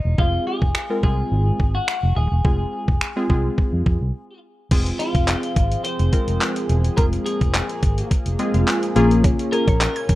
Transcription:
Already playing: clean electric guitar D#4
0.05 fingered electric bass E1
0.18 fingered electric bass F1, synth keys G#3 C4 F4 G#4, clean electric guitar F4, kick
0.47 clean electric guitar G#4
0.62 fingered electric bass F1, kick
0.75 finger snap
0.90 synth keys G#3 C4 F4 A#4
1.03 fingered electric bass C2, synth keys G#3 C4 F4 G#4, clean electric guitar G#4, kick
1.32 fingered electric bass G#1
1.60 fingered electric bass G#1, kick
1.75 clean electric guitar F#4
1.88 finger snap
2.03 fingered electric bass F1
2.16 fingered electric bass D#1, clean electric guitar G#4
2.31 fingered electric bass E1
2.45 fingered electric bass F1, synth keys G#3 C4 F4 G#4, kick
2.88 fingered electric bass F1, kick
3.01 finger snap
3.16 synth keys G#3 C4 F4 G#4
3.30 fingered electric bass C2, synth keys G#3 C4 F4 G#4, kick
3.58 kick
3.73 fingered electric bass F2
3.86 fingered electric bass F2, kick
4.01 fingered electric bass C2
4.71 fingered electric bass F1, analog synth pad F3 C4 G#4, synth keys G#3 C4 F4 G#4, kick, closed hi-hat, crash
4.86 closed hi-hat
4.99 clean electric guitar F4, closed hi-hat
5.15 fingered electric bass F1, kick, closed hi-hat
5.28 clap, closed hi-hat
5.43 closed hi-hat
5.56 fingered electric bass G#1, kick, closed hi-hat
5.72 closed hi-hat
5.84 clean electric guitar C5, closed hi-hat
5.99 fingered electric bass F1, closed hi-hat
6.13 synth keys G#3 C4 F4 A#4, kick, closed hi-hat
6.28 fingered electric bass F1, closed hi-hat
6.41 clap, closed hi-hat
6.56 closed hi-hat
6.69 fingered electric bass E1, closed hi-hat
6.84 closed hi-hat
6.97 fingered electric bass F1, synth keys G#3 C4 F4 G#4, analog synth pad A#3, clean electric guitar A#4, kick, closed hi-hat
7.13 closed hi-hat
7.26 clean electric guitar G#4, closed hi-hat
7.41 fingered electric bass F1, kick, closed hi-hat
7.54 clap, closed hi-hat
7.69 closed hi-hat
7.83 fingered electric bass G#1, kick, closed hi-hat
7.98 closed hi-hat
8.11 kick, closed hi-hat
8.26 fingered electric bass F1, closed hi-hat
8.39 synth keys G#3 C4 F4 G#4 D#5, closed hi-hat
8.54 fingered electric bass F1, synth keys F5, closed hi-hat
8.68 synth keys G#5, clap, closed hi-hat
8.83 closed hi-hat
8.96 fingered electric bass A#1, synth keys A#3 C#4 F4 G#4 A#5, analog synth pad C#4, closed hi-hat
9.11 closed hi-hat
9.24 synth arpeggio sound C#3, kick, closed hi-hat
9.39 closed hi-hat
9.52 synth arpeggio sound G#4, clean electric guitar A#4, closed hi-hat
9.67 fingered electric bass A#1, synth arpeggio sound C#5, kick, closed hi-hat
9.81 synth arpeggio sound A#5, clap, closed hi-hat
9.96 synth arpeggio sound G#6, closed hi-hat
10.09 fingered electric bass A#1, synth arpeggio sound C#3, kick, closed hi-hat

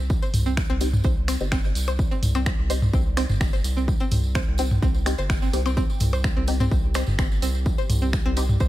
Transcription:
Already playing: analog synth bass C2, ambient pad C4 G4
0.00 ambient pad D5
0.10 kick, tambourine
0.22 synth pluck C5, tambourine
0.34 analog synth bass C2, mid tom, open hi-hat, tambourine
0.46 synth pluck C4, tambourine
0.57 finger snap, kick, tambourine
0.70 analog synth bass C2, synth pluck C4
0.81 synth stab C4 D#4 G4, open hi-hat, tambourine
0.93 mid tom, tambourine
1.04 analog synth bass C2, synth pluck C5, kick, tambourine
1.28 synth pluck C4, finger snap, open hi-hat, tambourine, percussion blips
1.40 analog synth bass G1, synth stab C4 D#4 G4, tambourine
1.52 synth pluck C4, finger snap, kick, tambourine
1.64 tambourine
1.75 analog synth bass C2, open hi-hat, tambourine
1.88 synth pluck C5, percussion blips
1.99 kick, tambourine
2.11 synth pluck C4, tambourine
2.23 analog synth bass C2, mid tom, open hi-hat, tambourine
2.35 synth pluck C4, tambourine, percussion blips
2.46 finger snap, kick, tambourine
2.59 analog synth bass C2
2.70 synth stab C4 D#4 G4, synth pluck C5, open hi-hat, tambourine
2.82 mid tom, tambourine
2.93 analog synth bass C2, synth pluck C4, kick, tambourine
3.17 synth pluck C4, synth stab C4 D#4 G4, finger snap, open hi-hat, tambourine, percussion blips
3.29 analog synth bass G1, mid tom, tambourine
3.41 finger snap, kick, tambourine
3.53 synth pluck C5, tambourine
3.64 analog synth bass C2, open hi-hat, tambourine
3.77 synth pluck C4, ambient pad G5, tambourine
3.88 kick, tambourine
4.00 synth pluck C4, tambourine
4.11 analog synth bass C2, mid tom, open hi-hat, tambourine
4.24 tambourine
4.35 synth pluck C5, finger snap, kick, tambourine
4.48 analog synth bass C2
4.58 synth pluck C4, synth stab C4 D#4 G4, open hi-hat, tambourine
4.71 mid tom, tambourine
4.82 analog synth bass C2, synth pluck C4, kick, tambourine
4.94 tambourine
5.06 synth stab C4 D#4 G4, finger snap, open hi-hat, tambourine, percussion blips
5.18 analog synth bass G1, synth pluck C5, tambourine
5.30 finger snap, kick, tambourine
5.42 synth pluck C4, tambourine
5.53 analog synth bass C2, synth stab C4 D#4 G4, open hi-hat, tambourine
5.66 synth pluck C4, tambourine, percussion blips
5.77 synth pluck C4, kick, tambourine
5.90 tambourine
6.00 analog synth bass C2, mid tom, open hi-hat, tambourine
6.13 synth pluck C5, tambourine, percussion blips
6.24 finger snap, kick, tambourine
6.37 analog synth bass C2, synth pluck C4
6.47 synth stab C4 D#4 G4, open hi-hat, tambourine
6.60 synth pluck C4, mid tom, tambourine
6.71 analog synth bass C2, kick, tambourine
6.94 synth stab C4 D#4 G4, synth pluck C5, finger snap, open hi-hat, tambourine, percussion blips
7.07 analog synth bass G1, mid tom, tambourine
7.19 synth pluck C4, finger snap, kick, tambourine
7.32 tambourine
7.42 analog synth bass C2, synth pluck C4, open hi-hat, tambourine
7.55 ambient pad D5, tambourine
7.66 kick, tambourine
7.78 synth pluck C5, tambourine
7.90 analog synth bass C2, mid tom, open hi-hat, tambourine
8.02 synth pluck C4, tambourine
8.13 finger snap, kick, tambourine
8.26 analog synth bass C2, synth pluck C4
8.37 synth stab C4 D#4 G4, open hi-hat, tambourine
8.49 mid tom, tambourine
8.60 analog synth bass C2, synth pluck C5, kick, tambourine

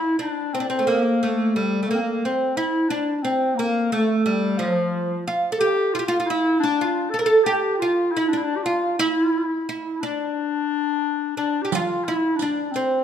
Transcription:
Already playing: oud E4, clarinet E4
0.17 clarinet D4, oud D4
0.53 clarinet C4, oud C4
0.60 oud D4
0.68 clarinet C4, oud C4
0.79 oud A3
0.87 oud A#3, clarinet A#3
1.23 oud A3
1.55 clarinet G3, oud G3
1.83 oud A3
1.87 clarinet A#3, oud A#3
1.94 clarinet C4
2.02 clarinet A#3
2.25 clarinet C4, oud C4
2.57 clarinet E4, oud E4
2.88 clarinet D4, oud D4
3.16 clarinet D4
3.22 clarinet C4, oud C4
3.55 clarinet A#3, oud A#3
3.91 clarinet A3, oud A3
4.17 clarinet A3
4.26 oud G3, clarinet G3
4.59 clarinet F3, oud F3
5.27 oud F4
5.52 oud A4
5.59 clarinet G4, oud G4
5.93 clarinet F4, oud F4
5.99 clarinet F4, oud G4
6.06 clarinet F4, oud F4
6.20 oud F4, clarinet F4
6.26 clarinet E4, oud E4
6.60 clarinet D4, oud D4
6.81 oud F4
7.10 clarinet A4, oud A4
7.19 clarinet A4, oud A#4
7.26 oud A4
7.44 clarinet G4, oud G4
7.78 clarinet F4
7.82 oud F4
8.12 clarinet E4
8.17 oud E4
8.28 clarinet D4
8.33 oud D4, clarinet E4
8.44 clarinet D4
8.57 clarinet G4
8.63 clarinet F4, oud F4
8.98 clarinet E4, oud E4
9.69 oud E4
9.95 clarinet E4
10.00 clarinet D4, oud D4
11.37 clarinet D4, oud D4
11.63 clarinet G4, oud G4
11.71 clarinet F4, oud F4, riq
12.04 oud E4, clarinet F4
12.15 clarinet E4
12.36 clarinet D4, riq
12.42 oud D4
12.71 clarinet C4, riq
12.76 oud C4

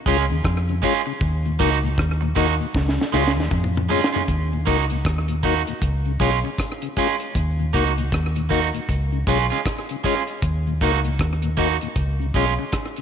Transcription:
0.06 fingered electric bass C#2, clean electric guitar G#3 C#4 F4, tonewheel organ G#3 C#4 F4, kick, closed hi-hat, cabasa
0.30 fingered electric bass D#2, tonewheel organ C#3, cabasa
0.44 fingered electric bass F2, kick, cross-stick, cabasa
0.68 tonewheel organ C#3, cabasa
0.82 clean electric guitar G#3 C#4 F4, tonewheel organ G#3 C#4 F4, kick, closed hi-hat, cabasa
1.06 tonewheel organ C#3, muted clean electric guitar stroke, cabasa
1.21 fingered electric bass D#2, kick, cabasa
1.45 tonewheel organ D#2 A#2, cabasa
1.59 fingered electric bass C#2, clean electric guitar A#3 D#4 F#4, tonewheel organ A#3 D#4 F#4, kick, closed hi-hat, cabasa
1.83 tonewheel organ D#2 A#2, cabasa
1.98 fingered electric bass D#2, kick, cross-stick, cabasa
2.21 tonewheel organ D#2 A#2, muted clean electric guitar stroke, cabasa
2.35 fingered electric bass D#2, clean electric guitar A#3 D#4 F#4, tonewheel organ A#3 D#4 F#4, kick, cross-stick, closed hi-hat, cabasa
2.60 tonewheel organ D#2 A#2, cabasa
2.74 fingered electric bass C#2, kick, snare, cabasa
2.89 snare
2.98 tonewheel organ C#3, snare, cabasa
3.12 fingered electric bass C#2, clean electric guitar G#3 C#4 F4, tonewheel organ G#3 C#4 F4, snare, cabasa
3.28 snare
3.36 fingered electric bass D#2, tonewheel organ C#3, snare, cabasa
3.50 fingered electric bass F2, kick, mid tom, cabasa
3.64 mid tom
3.75 tonewheel organ C#3, mid tom, cabasa
3.89 clean electric guitar G#3 C#4 F4, tonewheel organ G#3 C#4 F4, floor tom, cabasa
4.04 snare
4.12 tonewheel organ C#3, clean electric guitar G#3 C#4 F4, floor tom, cabasa
4.28 fingered electric bass D#2, kick, closed hi-hat, cabasa
4.51 tonewheel organ D#2 A#2, cabasa
4.66 fingered electric bass C#2, clean electric guitar A#3 D#4 F#4, tonewheel organ A#3 D#4 F#4, kick, closed hi-hat, cabasa
4.90 tonewheel organ D#2 A#2, closed hi-hat, cabasa
5.04 fingered electric bass D#2, kick, cross-stick, closed hi-hat, cabasa
5.27 tonewheel organ D#2 A#2, closed hi-hat, cabasa
5.43 clean electric guitar A#3 D#4 F#4, tonewheel organ A#3 D#4 F#4, kick, closed hi-hat, cabasa
5.67 tonewheel organ D#2 A#2, closed hi-hat, cabasa
5.81 fingered electric bass C#2, kick, closed hi-hat, cabasa
6.05 tonewheel organ C#3, cabasa
6.20 fingered electric bass B1, clean electric guitar G#3 C#4 F4, tonewheel organ G#3 C#4 F4, kick, closed hi-hat, cabasa
6.44 tonewheel organ C#3, muted clean electric guitar stroke, cabasa
6.58 kick, cross-stick, closed hi-hat, cabasa
6.82 tonewheel organ C#3, closed hi-hat, cabasa
6.97 tonewheel organ G#3 C#4 F4, clean electric guitar G#3 C#4 F4, kick, closed hi-hat, cabasa
7.20 closed hi-hat, cabasa
7.35 fingered electric bass D#2, kick, closed hi-hat, cabasa
7.59 tonewheel organ D#2 A#2, cabasa
7.73 fingered electric bass C#2, clean electric guitar A#3 D#4 F#4, tonewheel organ A#3 D#4 F#4, kick, closed hi-hat, cabasa
7.98 tonewheel organ D#2 A#2, closed hi-hat, cabasa
8.12 fingered electric bass D#2, kick, cross-stick, closed hi-hat, cabasa
8.35 tonewheel organ D#2 A#2, closed hi-hat, cabasa
8.49 clean electric guitar A#3 D#4 F#4, tonewheel organ A#3 D#4 F#4, kick, closed hi-hat, cabasa
8.74 tonewheel organ D#2 A#2, closed hi-hat, cabasa
8.89 fingered electric bass C#2, kick, closed hi-hat, cabasa
9.12 tonewheel organ C#3, cabasa
9.27 fingered electric bass B1, clean electric guitar G#3 C#4 F4, tonewheel organ G#3 C#4 F4, kick, closed hi-hat, cabasa
9.50 tonewheel organ C#3, clean electric guitar G#3 C#4 F4, cabasa
9.65 kick, cross-stick, closed hi-hat, cabasa
9.89 tonewheel organ C#3, closed hi-hat, cabasa
10.04 clean electric guitar G#3 C#4 F4, tonewheel organ G#3 C#4 F4, kick, closed hi-hat, cabasa
10.27 closed hi-hat, cabasa
10.42 fingered electric bass D#2, kick, closed hi-hat, cabasa
10.66 tonewheel organ D#2 A#2, cabasa
10.81 fingered electric bass C#2, clean electric guitar A#3 D#4 F#4, tonewheel organ A#3 D#4 F#4, kick, closed hi-hat, cabasa
11.04 tonewheel organ D#2 A#2, closed hi-hat, cabasa
11.19 fingered electric bass D#2, kick, cross-stick, closed hi-hat, cabasa
11.42 tonewheel organ D#2 A#2, closed hi-hat, cabasa
11.57 clean electric guitar A#3 D#4 F#4, tonewheel organ A#3 D#4 F#4, kick, closed hi-hat, cabasa
11.81 tonewheel organ D#2 A#2, closed hi-hat, cabasa
11.96 fingered electric bass C#2, kick, closed hi-hat, cabasa
12.20 tonewheel organ C#3, cabasa
12.34 fingered electric bass B1, clean electric guitar G#3 C#4 F4, tonewheel organ G#3 C#4 F4, kick, closed hi-hat, cabasa
12.59 tonewheel organ C#3, muted clean electric guitar stroke, cabasa
12.72 kick, cross-stick, closed hi-hat, cabasa
12.96 tonewheel organ C#3, closed hi-hat, cabasa

